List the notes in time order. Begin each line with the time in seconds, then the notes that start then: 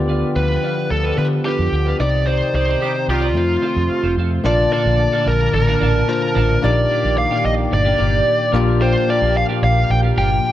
Already playing: D2 D3 F3 B3 F4 G4 D5
0.08 D4 F4 B4
0.35 D2 D4 F4 B4
0.49 D4 F4 B4
0.63 D4 F4 B4
0.76 muted clean electric guitar stroke
0.91 D2 A4, muted clean electric guitar stroke
1.04 D4 F4 B4
1.17 D3 B3 F4 G4 A4 B4
1.25 B4
1.32 muted clean electric guitar stroke
1.45 D4 F4 G4 B4
1.59 F2, muted clean electric guitar stroke
1.72 D2, muted clean electric guitar stroke
1.86 D4 F4 B4
1.99 C2 C3 D#3 C4 D#4 G4 D5
2.13 muted clean electric guitar stroke
2.26 D#4 G4 C5 D5
2.54 C2 D#4 G4 C5 D5
2.67 D#4 G4 D5
2.80 D#3 D4 D#4 G4 D5
2.94 muted clean electric guitar stroke
3.08 C2 D#3 D4 F4 G4, muted clean electric guitar stroke
3.21 D#4 G4 D5
3.35 F2 C3 A3 C4 F4 C5
3.48 muted clean electric guitar stroke
3.62 C4 F4 A4
3.76 F2, muted clean electric guitar stroke
3.90 muted fingered electric bass stroke, muted clean electric guitar stroke
4.03 F1 C4 F4 A4
4.17 F2 C4 F4 A4
4.31 muted clean electric guitar stroke
4.44 A#1 A#2 D3 A#3 D4 F4 A4 D5 A5
4.58 muted clean electric guitar stroke
4.72 D4 F4 A4 D5
4.85 A#1 D4 F4 A4
4.99 muted clean electric guitar stroke
5.12 D4 F4 A4
5.26 A#1 A#4, muted clean electric guitar stroke
5.40 muted clean electric guitar stroke
5.53 A1 A#4, muted clean electric guitar stroke
5.67 D4 F4 A4
5.81 A1 D4 F4 A4
5.95 muted clean electric guitar stroke
6.08 A#3 D4 F4 A#4 C5 A5, muted clean electric guitar stroke
6.22 muted clean electric guitar stroke
6.35 A1 D4 F4 A4
6.49 muted clean electric guitar stroke
6.62 A#1 A#2 D#3 A#3 D4 D#4 G4 D5
6.77 muted clean electric guitar stroke
6.90 A#3 D4 G4
7.04 A#1 A#3 D4 G4
7.18 F5, muted clean electric guitar stroke
7.31 A#3 D4 G4
7.45 A#1 D#5, muted clean electric guitar stroke
7.58 muted clean electric guitar stroke
7.71 G1 D5, muted clean electric guitar stroke
7.85 A#3 D4 G4
7.98 G1 A#3 D4 G4
8.12 muted clean electric guitar stroke
8.26 muted clean electric guitar stroke
8.39 muted clean electric guitar stroke
8.52 A#1 A#2 F3 A#3 D4 F4 G4 D5
8.67 A#3 F4 G4
8.80 A#3 F4 G4 C5
8.94 muted clean electric guitar stroke
9.08 A#3 F4 G4 D5
9.22 A#1 A#3 F4 G4
9.36 F5, muted clean electric guitar stroke
9.49 A#3 F4 G4
9.62 A#1 F5, muted clean electric guitar stroke
9.76 muted clean electric guitar stroke
9.90 A#1 G5, muted clean electric guitar stroke
10.03 A#3 F4 G4
10.16 G1 A#3 F4 G4 G5
10.31 muted clean electric guitar stroke
10.44 muted clean electric guitar stroke